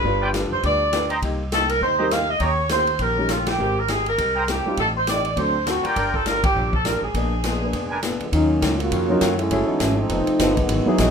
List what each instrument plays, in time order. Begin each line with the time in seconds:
Already playing: saxophone section B4
0.04 upright bass G1, hollow-body jazz guitar G3 D4 F4 B4, grand piano G3 D4 F4 B4
0.21 trumpet section F4 B4 D5 G5
0.33 hollow-body jazz guitar G3 D4 F4 B4, snare, hi-hat pedal, ride
0.51 upright bass F1, saxophone section C5
0.63 upright bass D2, hollow-body jazz guitar G3 D4 F4 B4, saxophone section D5, kick, ride
0.92 hollow-body jazz guitar G3 D4 F4 B4, snare, hi-hat pedal, ride
1.10 trumpet section G4 C5 D#5 A#5, ride
1.22 upright bass C2, hollow-body jazz guitar C3 A#3 D#4 G4, kick, ride
1.52 hollow-body jazz guitar C3 A#3 D#4 G4, saxophone section A4, snare, hi-hat pedal, ride
1.69 saxophone section A#4, ride
1.81 upright bass D#2, hollow-body jazz guitar C3 A#3 D#4 G4, saxophone section C5, kick
1.98 grand piano G3 C4 D#4 A#4, trumpet section G4 C5 D#5 A#5
2.11 hollow-body jazz guitar C3 A#3 D#4 G4, saxophone section F5, snare, hi-hat pedal, ride
2.30 saxophone section D#5
2.40 upright bass D#2, hollow-body jazz guitar D#3 A#3 C#4, trumpet section G4 C#5 D#5 A#5, saxophone section C#5, kick, ride
2.44 hollow-body jazz guitar G4
2.69 hollow-body jazz guitar D#3 A#3 C#4 G4, saxophone section C5, snare, hi-hat pedal, ride
2.87 ride
2.99 upright bass A#1, hollow-body jazz guitar D#3 A#3 C#4 G4, saxophone section A#4, kick, ride
3.18 grand piano G3 C#4 D#4 A#4
3.29 hollow-body jazz guitar D#3 A#3 C#4 G4, saxophone section F4, snare, hi-hat pedal, ride
3.46 saxophone section G4, snare, ride
3.59 upright bass G#1, hollow-body jazz guitar G#3 C4 G4 A#4, grand piano G#3 C4 G4 A#4
3.79 saxophone section A#4
3.88 hollow-body jazz guitar G#3 C4 G4 A#4, saxophone section G#4, snare, hi-hat pedal, ride
4.06 saxophone section A#4, ride
4.18 upright bass C2, hollow-body jazz guitar G#3 C4 G4 A#4, kick, ride
4.36 trumpet section G#4 C5 G5 A#5
4.48 hollow-body jazz guitar G#3 C4 G4 A#4, saxophone section G4, snare, hi-hat pedal, ride
4.66 grand piano G3 C4 D#4 F4, muted upright bass stroke
4.77 upright bass A1, hollow-body jazz guitar A2 G3 C4 D#4, saxophone section A4, kick, ride
4.97 saxophone section C5
5.07 hollow-body jazz guitar A2 G3 C4 D#4, saxophone section D5, snare, hi-hat pedal, ride
5.25 ride
5.36 upright bass D2, hollow-body jazz guitar D3 A3 C4 F#4, grand piano F#3 C4 D4 A4, saxophone section C5, kick, ride
5.66 hollow-body jazz guitar D3 A3 C4 F#4, saxophone section F#4, snare, hi-hat pedal, ride
5.83 trumpet section F4 A#4 D5 G5, saxophone section G4, muted upright bass stroke, ride
5.96 upright bass G1, hollow-body jazz guitar G3 D4 F4 A#4, saxophone section A#4, kick, ride
6.14 saxophone section A4, kick
6.26 hollow-body jazz guitar G3 D4 F4 A#4, saxophone section A#4, snare, hi-hat pedal, ride
6.44 saxophone section G4, kick, ride
6.55 upright bass A#1, hollow-body jazz guitar G3 D4 F4 A#4
6.73 saxophone section A4, kick
6.85 hollow-body jazz guitar G3 D4 F4 A#4, saxophone section A#4, snare, hi-hat pedal, ride
7.02 upright bass A1, saxophone section G#4
7.14 upright bass A#1, hollow-body jazz guitar A#2 G#3 B3 D4, grand piano A#3 D4 G#4 B4, kick, ride
7.44 hollow-body jazz guitar A#2 G#3 B3 D4, snare, hi-hat pedal, ride
7.61 grand piano A#3 D4 G#4 B4
7.73 upright bass F1, hollow-body jazz guitar A#2 G#3 B3 D4, kick, ride
7.90 trumpet section D4 A#4 B4 G#5
8.03 hollow-body jazz guitar A#2 G#3 B3 D4, snare, hi-hat pedal, ride
8.20 trombone section D3 F3 G#3 B3, muted upright bass stroke, ride
8.32 upright bass D#2, hollow-body jazz guitar D#3 F#3 C#4 F4, trombone section F#3 A#3 C#4 D#4, kick, ride
8.61 upright bass C#2, hollow-body jazz guitar D#3 F#3 C#4 F4, kick, snare, hi-hat pedal, ride
8.78 trombone section C#3 A#3 F4 F#4, ride
8.91 upright bass F2, hollow-body jazz guitar D#3 F#3 C#4 F4, kick, ride
9.09 grand piano F#3 C#4 D#4 F4 A#4
9.21 upright bass F#2, hollow-body jazz guitar D#3 F#3 C#4 F4, kick, snare, hi-hat pedal, ride
9.37 trombone section G#3 A3 C#4 E4, ride
9.51 upright bass F#1, hollow-body jazz guitar F#3 A3 E4 G#4, grand piano C#4 E4 F#4 G#4 A4, kick, ride
9.67 trombone section E3 G#3 B3 D#4, muted upright bass stroke
9.79 upright bass G#1, trombone section E3 G#3 A3 C#4, hollow-body jazz guitar F#3 A3 E4 G#4, kick, snare, hi-hat pedal, ride
9.96 trombone section F3 A3 C4 D#4
10.09 upright bass F1, hollow-body jazz guitar F3 B3 D#4 A4, kick, ride
10.27 muted upright bass stroke, ride
10.39 upright bass G1, hollow-body jazz guitar F3 B3 D#4 A4, grand piano A3 C4 D#4 F4 B4, kick, snare, hi-hat pedal, ride
10.57 trombone section D#3 F#3 G#3 B3, kick, ride
10.69 upright bass G#1, hollow-body jazz guitar E3 G#3 D#4 F#4, kick, ride
10.86 grand piano F#3 B3 D#4 E4 G#4, muted upright bass stroke
10.98 upright bass A#1, hollow-body jazz guitar E3 G#3 D#4 F#4, kick, snare, hi-hat pedal, ride